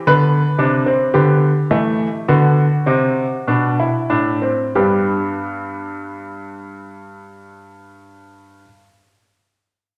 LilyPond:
<<
  \new Staff \with { instrumentName = "Grand piano" } { \time 4/4 \key g \major \tempo 4 = 46 << { b'4 g'4 fis'2 | <g d' g'>1 | } \\ { b8 d'16 c'16 b8 a8 b8 c'8 d'16 e'16 d'16 c'16 | b1 | } >> }
  \new Staff \with { instrumentName = "Grand piano" } { \clef bass \time 4/4 \key g \major d8 c8 d8 e8 d8 c8 b,8 a,8 | g,1 | }
>>